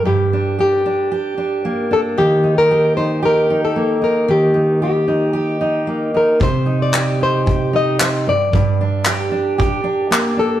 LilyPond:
<<
  \new Staff \with { instrumentName = "Nylon-string guitar" } { \time 4/4 \key g \minor \tempo 4 = 113 g'4 g'4 r4. a'8 | g'8. bes'8. c''8 bes'8. a'8. bes'8 | g'4 g'4 r4. bes'8 | c''8. d''8. c''4 ees''8 c''8 d''8~ |
d''4. r2 a'8 | }
  \new Staff \with { instrumentName = "Steel-string acoustic guitar" } { \time 4/4 \key g \minor g,8 d'8 g'8 d'8 g'8 d'8 bes8 d'8 | ees8 ees'8 g'8 ees'8 g'8 ees'8 bes8 ees'8 | ees8 ees'8 g'8 ees'8 g'8 ees'8 bes8 ees'8 | c8 ees'8 g'8 ees'8 g'8 ees'8 c'8 g,8 |
g,8 d'8 g'8 d'8 g'8 d'8 bes8 d'8 | }
  \new DrumStaff \with { instrumentName = "Drums" } \drummode { \time 4/4 r4 r4 r4 r4 | r4 r4 r4 r4 | r4 r4 r4 r4 | bd4 hc4 bd4 hc4 |
bd4 hc4 bd4 hc4 | }
>>